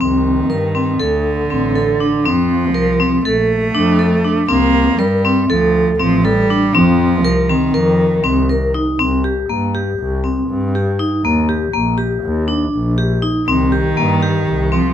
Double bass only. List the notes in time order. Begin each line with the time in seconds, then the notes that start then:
0.00 C2
0.50 G2
1.00 D2
1.50 A1
2.25 F2
2.74 C2
3.25 A#1
3.74 F2
4.49 C2
4.99 G2
5.49 D2
5.99 A1
6.74 F2
7.24 C2
7.74 F2
8.24 C2
8.99 C2
9.49 G2
9.99 C2
10.49 G2
11.24 D#2
11.74 A#1
12.23 D#2
12.74 A#1
13.48 C2
13.97 G2
14.47 C2